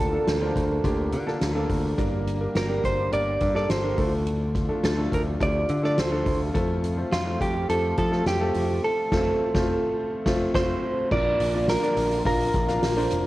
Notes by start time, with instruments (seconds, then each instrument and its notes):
Already playing: picked electric bass D2, grand piano D3 A#3 D4 F4 G4 A4 A5, analog synth pad D3 A#3 F4, clean electric guitar A4
0.13 grand piano A#3 D4 F4 A4
0.27 picked electric bass D2, snare, closed hi-hat
0.41 grand piano A#3 D4 F4 C5
0.56 picked electric bass D2, kick, closed hi-hat
0.84 picked electric bass D2, grand piano A#3 D4 F4 G4, kick, closed hi-hat
1.12 picked electric bass D3, closed hi-hat
1.27 grand piano A#3 D4 F4 A4, snare
1.41 picked electric bass D2, snare, closed hi-hat
1.55 grand piano A#3 D4 F4 A4
1.69 picked electric bass D2, kick, open hi-hat
1.98 picked electric bass G1, grand piano G2 A#3 D4 G4 A#4, analog synth pad G3 G4, kick, closed hi-hat
2.27 closed hi-hat
2.41 grand piano A#3 D4 G4 A#4
2.55 picked electric bass G1, clean electric guitar A#4, snare, closed hi-hat
2.69 grand piano A#3 D4 G4 A#4
2.84 picked electric bass G1, clean electric guitar C5, kick, closed hi-hat
3.12 picked electric bass G1, grand piano A#3 D4 G4 A#4, clean electric guitar D5, closed hi-hat
3.40 picked electric bass G2, kick, closed hi-hat
3.55 grand piano A#3 D4 G4 A4, clean electric guitar D5, snare
3.70 picked electric bass G1, clean electric guitar C5, snare, closed hi-hat
3.83 grand piano A#3 D4 G4 A#4
3.97 picked electric bass D2, grand piano D3 A3 D4 F4 A4, analog synth pad F3 A3 F4, kick, open hi-hat
4.27 closed hi-hat
4.55 kick, closed hi-hat
4.69 grand piano A3 D4 F4 A4
4.84 picked electric bass D2, clean electric guitar A4, snare, closed hi-hat
4.97 grand piano A3 D4 F4 A4
5.12 picked electric bass D2, clean electric guitar A#4, kick, closed hi-hat
5.40 picked electric bass D2, grand piano A3 D4 F4 G4, clean electric guitar D5, kick, closed hi-hat
5.69 picked electric bass D3, closed hi-hat
5.83 grand piano A3 D4 F4 A4, clean electric guitar D5, snare
5.98 picked electric bass D2, clean electric guitar C5, snare, closed hi-hat
6.12 grand piano A3 D4 F4 A4
6.26 picked electric bass D2, kick, open hi-hat
6.54 picked electric bass F2, analog synth pad C3, grand piano A3 C4 F4 A4, kick, closed hi-hat
6.84 closed hi-hat
6.97 grand piano A3 C4 F4 C5
7.12 picked electric bass F2, clean electric guitar F4, snare, closed hi-hat
7.26 grand piano A3 C4 F4 C5
7.41 picked electric bass F2, clean electric guitar G4, kick, closed hi-hat
7.69 picked electric bass F2, grand piano A3 C4 F4 G4, clean electric guitar A4, closed hi-hat
7.97 picked electric bass F3, clean electric guitar A4, kick, closed hi-hat
8.12 grand piano A3 C4 F4 A4, snare
8.26 picked electric bass F2, clean electric guitar G4, snare, closed hi-hat
8.41 grand piano A3 C4 F4 A4
8.54 picked electric bass F2, open hi-hat
8.84 clean electric guitar A4
9.12 picked electric bass F1, grand piano A3 C4 F4 A4, kick, snare, crash
9.54 picked electric bass F1, grand piano A3 C4 F4 C5, kick, snare
10.26 picked electric bass F1, grand piano A3 C4 F4, kick, snare
10.54 picked electric bass F1, grand piano A3 C4 F4, clean electric guitar C5, kick, snare, crash
11.11 picked electric bass A#1, grand piano A#2 A#3 D4 F4 A#4 D5, analog synth pad D3 F3 A#3 F4, clean electric guitar D5, kick, crash
11.40 picked electric bass A#1, hi-hat pedal, open hi-hat
11.54 grand piano A#3 D4 F4 A#4 D5, open hi-hat
11.68 clean electric guitar A#4, snare, hi-hat pedal, open hi-hat
11.82 grand piano A#3 D4 F4 A#4 D5, hi-hat pedal, open hi-hat
11.96 picked electric bass A#1, hi-hat pedal, open hi-hat
12.11 hi-hat pedal, open hi-hat
12.25 picked electric bass A#1, grand piano A#3 D4 F4 A#4 F5, clean electric guitar A#4, kick, hi-hat pedal, open hi-hat
12.40 hi-hat pedal, open hi-hat
12.53 picked electric bass A#1, kick, hi-hat pedal, open hi-hat
12.68 grand piano A#3 D4 F4 A#4 F5, snare, hi-hat pedal, open hi-hat
12.83 picked electric bass A#1, snare, hi-hat pedal, open hi-hat
12.97 grand piano A#3 D4 F4 A#4 C5, hi-hat pedal, open hi-hat
13.10 picked electric bass F1, hi-hat pedal, open hi-hat